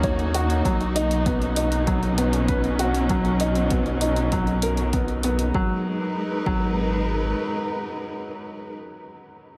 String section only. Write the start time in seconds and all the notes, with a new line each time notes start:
Already playing: D#3 A#3 D#4 F#4
0.66 B2
0.88 F#3
1.27 C#4
5.54 G#3
5.63 D#4
5.73 A#4
5.82 B4